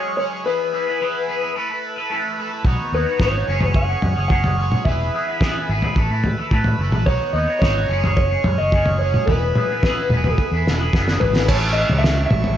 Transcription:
Already playing: F#3 G#3 C#4 G#4 C#5 F#5 C#6
0.17 G#3 C#4 G#4 C#5
0.31 C#4 G#4 C#5
0.43 E3 B3 E4 G#4 B4 E5 B5
0.73 B3 E4 G#4 B4
0.87 E4 G#4 B4
1.00 E3 B3 E4 G#4 B4
1.28 B3 E4 G#4 B4
1.41 E4 G#4 B4
1.55 A3 E4 A4 B4 B5
1.70 E4 A4 B4
1.96 E4 A4 B4
2.10 A3 E4 A4 B4
2.38 A3 E4 A4 B4
2.51 E4 A4 B4
2.64 B1 B3 D#4 F#4 B4 C#5 D#5 F#5 C#6, kick, floor tom
2.92 D#2 B3 D#4 F#4 B4 C#5
3.06 D#4 F#4 C#5
3.19 G#1 B3 D#4 F#4 C#5, kick, snare, floor tom
3.46 F#1 F#3 G#3 C#4 G#4 C#5 C#6
3.61 C#4 G#4 C#5, floor tom
3.66 B4
3.74 F#5, kick
3.89 C#4 G#4 C#5
4.02 F#2, floor tom
4.16 F#1 C#4 G#4 C#5
4.28 F#3 G#3 C#4 G#4 F#5, kick
4.32 C#5
4.44 floor tom
4.58 G#3 C#4 G#4 C#5
4.72 C#4 G#4 C#5, mid tom
4.85 E1 E3 B3 E4 G#4 B4 E5 B5, kick, floor tom
5.14 B3 E4 G#4 B4
5.27 E4 G#4 B4
5.41 E3 B3 E4 G#4 B4, kick, snare, floor tom
5.69 G#1 B3 E4 G#4 B4
5.82 E4 G#4 B4, floor tom
5.95 A1 A3 E4 A4, kick
6.00 B4
6.10 A2 A4 B4
6.14 E4
6.24 floor tom
6.38 E4 A4 B4
6.51 A2 A3 E4 A4 B4, kick
6.64 floor tom
6.79 F#1 A3 E4 A4 B4
6.92 A1 E4 A4 B4, mid tom
7.05 B1 B3 D#4 F#4 C#5 D#5 F#5 C#6, kick, floor tom
7.33 D#2 B3 D#4 F#4 C#5 D#5
7.47 D#4 F#4 C#5
7.59 G#1 B3 D#4 F#4 C#5, kick, floor tom
7.63 C#5, snare
7.88 F#1 F#3 G#3 C#4 G#4 C#5
8.04 C#4 G#4 C#5, floor tom
8.17 C#5, kick
8.31 C#4 G#4 C#5
8.44 F#2, floor tom
8.58 F#1 C#4 G#4 C#5 D#5
8.72 F#3 G#3 C#4 G#4 C#5, kick
8.86 floor tom
8.99 G#3 C#4 G#4 C#5
9.14 C#4 G#4 C#5, mid tom
9.26 E1 E3 B3 E4 G#4 B4 E5 B5, kick, floor tom
9.30 B4
9.55 B3 E4 G#4 B4, mid tom
9.70 E4 G#4 B4
9.83 E3 B3 E4 G#4 B4, kick, snare, floor tom
10.09 E1 B3 E4, mid tom
10.14 G#4 B4
10.24 G#4 B4, floor tom
10.28 E4
10.34 A4
10.38 kick
10.51 E2 G#4 B4
10.56 E4
10.66 E1, snare
10.80 E4 G#4 B4
10.93 F#1 E3 B3 E4 G#4 B4, kick, snare
11.08 snare
11.20 G#1 B3 E4 G#4 B4, floor tom
11.34 E4 G#4 B4, snare
11.47 A1 A2 A3 C#4 E4 A4 C#5 E5 C#6, kick, floor tom, crash
11.73 D#5
11.89 C#2, floor tom
11.99 E5
12.04 snare
12.26 E5
12.31 A1, floor tom, mid tom
12.44 floor tom

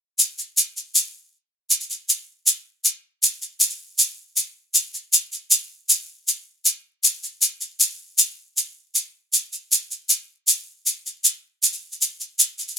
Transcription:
0.19 shaker
0.38 shaker
0.57 shaker
0.77 shaker
0.95 shaker
1.71 shaker
1.81 shaker
1.90 shaker
2.09 shaker
2.47 shaker
2.85 shaker
3.23 shaker
3.42 shaker
3.60 shaker
3.70 shaker
3.99 shaker
4.37 shaker
4.74 shaker
4.94 shaker
5.13 shaker
5.32 shaker
5.51 shaker
5.89 shaker
6.28 shaker
6.66 shaker
7.04 shaker
7.23 shaker
7.42 shaker
7.61 shaker
7.80 shaker
8.18 shaker
8.57 shaker
8.95 shaker
9.33 shaker
9.53 shaker
9.72 shaker
9.91 shaker
10.09 shaker
10.48 shaker
10.86 shaker
11.06 shaker
11.24 shaker
11.63 shaker
11.73 shaker
11.92 shaker
12.02 shaker
12.20 shaker
12.39 shaker
12.59 shaker
12.68 shaker

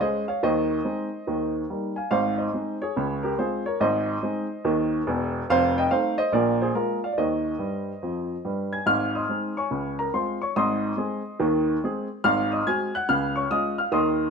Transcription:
0.01 G#3 C#4 G#4 C5 D#5
0.28 C#5 F5
0.43 D#2 D#3 C5 D#5
0.84 G#3 C4 D#4
1.27 D#2 D#3
1.70 G3 A#3 D#4
1.96 F5 G#5
2.11 G#1 G#2 C5 F5
2.38 C5 D#5
2.54 G#3 C4 D#4
2.82 G#4 C#5
2.96 C#2 C#3
3.23 G4 A#4
3.38 G#3 C4 F4 G#4 C5
3.66 A#4 C#5
3.80 G#1 G#2 C5 D#5
4.23 G#3 C4 D#4
4.64 D#2 D#3
5.07 E1 E2
5.50 F1 F2 C5 F5
5.78 D#5 G5
5.91 A3 C4 D#4 C5 F5
6.18 C5 D#5
6.32 A#1 A#2 A#4 D5
6.61 G#4 C5
6.75 G#3 A#3 F4 A#4
7.04 D5 F5
7.13 D5
7.18 D#2 D#3 C5 D#5
7.59 G2 G3
8.03 F2 F3
8.45 G2 G3
8.73 G#5 G#6
8.86 G#1 G#2 F5 F6
9.15 D#5 C6 D#6
9.29 G#3 C4 D#4
9.57 C#5 G#5 C#6
9.71 C#2 C#3
9.99 A#4 A#5
10.14 G#3 C4 F4 C5 C6
10.42 C#5 C#6
10.56 G#1 G#2 D#5 C6 D#6
10.97 G#3 C4 G#4
11.40 D#2 D#3
11.84 G#3 C4 G#4
12.24 G#1 G#2 F5 F6
12.52 D#5 D#6
12.67 G#3 C4 F#4 G#5 G#6
12.95 F#5 F#6
13.09 C#2 C#3 F5 F6
13.36 C#5 C#6
13.51 G#3 C#4 F4 D#5 D#6
13.78 F5 F6
13.92 D#2 D#3 D#5 C6 D#6

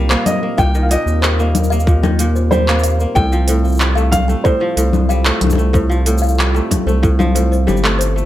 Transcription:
Already playing: C2 A#2 G3 C4 D#4 A#4 F5
0.10 A#3 C5, clap, cabasa
0.26 D#5, open hi-hat, low conga, cabasa
0.43 A#3
0.58 C2 A#2 F5 G5, kick, cabasa
0.75 D#3, cabasa
0.83 F5
0.89 A#2 D#5 G5, open hi-hat, cabasa
1.06 D#2, cabasa
1.22 G3 C5, clap, cabasa
1.39 A#3, cabasa
1.55 open hi-hat, low conga, cabasa
1.64 cabasa
1.70 A#3 F5, cabasa
1.80 cabasa
1.87 A#2, kick, cabasa
2.03 D#3 G5, low conga, cabasa
2.19 A#2, open hi-hat, cabasa
2.35 C5, cabasa
2.51 G3 C5, low conga, cabasa
2.68 A#3, clap, cabasa
2.79 cabasa
2.83 F5, open hi-hat, cabasa
3.00 A#3, cabasa
3.15 C2 A2 G3 F4 A4 G5, kick, cabasa
3.32 F3, cabasa
3.48 A2 C5, open hi-hat, cabasa
3.65 cabasa
3.67 cabasa
3.69 cabasa
3.72 cabasa
3.74 cabasa
3.77 cabasa
3.79 clap, cabasa
3.81 G3, cabasa
3.96 A3 F5, cabasa
4.12 F5, kick, open hi-hat, low conga, cabasa
4.28 A3 G5, cabasa
4.44 A2 C5, kick, cabasa
4.60 F3 C5
4.77 C2 A2, open hi-hat, cabasa
4.93 low conga, cabasa
5.09 G3 F5, cabasa
5.25 A3, clap, cabasa
5.41 C2 G5, open hi-hat, low conga
5.44 low conga
5.47 low conga
5.50 low conga, cabasa
5.53 low conga
5.55 A3, low conga, cabasa
5.73 A2 C5, kick, cabasa
5.90 F3, cabasa
6.06 A2, open hi-hat, cabasa
6.18 F5, cabasa
6.26 cabasa
6.29 cabasa
6.31 cabasa
6.34 cabasa
6.37 G3, clap, cabasa
6.40 cabasa
6.54 A3 G5, cabasa
6.71 kick, open hi-hat, low conga, cabasa
6.86 C2 A3 C5, cabasa
7.03 A2, kick, cabasa
7.19 F3, low conga, cabasa
7.35 A2 C5, open hi-hat, cabasa
7.52 C5, cabasa
7.67 G1 G3 G4, low conga, cabasa
7.77 cabasa
7.83 A3, clap
7.99 C5, open hi-hat, cabasa
8.16 A3, cabasa

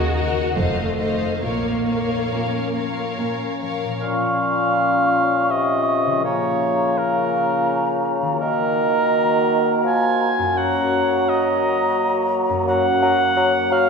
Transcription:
Already playing: D#2 D#3 F#4 A#4 D#5 F#5
0.15 D#4 F#4 A#4 D#5 F#5
0.55 F1 F2 A3 C5 D#5 F5
0.98 D#4 F4 C5 D#5 F5
1.42 A#1 A#2 A#3 A#4 C#5 F5
1.87 F3 A#4 C#5 F5
2.32 A#2 C#4
2.75 F4 A#4 C#5 F5
3.18 A#2 C#4
3.62 F3 A#4 C#5 F5
3.85 A#2
3.90 F3
3.94 C#4
3.98 A#2 A#4 F5 C#6
4.03 C#4 F4
5.50 C3 D#5
6.06 C#3
6.10 F3
6.15 F4
6.20 A#4
6.25 C#3 A#3 C#5 A#5
6.98 A#4 A#5
8.22 D#3
8.27 A#3
8.31 F#4
8.36 A#4
8.41 D#3 F#4 A#4 A#5
9.84 F3 G#5
10.39 F#2
10.43 A#3
10.48 F#4
10.52 A#4
10.56 F#3 A#3 F#5 A#5
11.29 D#5 A#5
12.49 F#2
12.54 A#3
12.58 F#4
12.63 F#4 A#4
12.67 F#3 F#5 A#5
13.02 F#3 A#5
13.37 F#3 A#5
13.70 F#3 F5 A#5

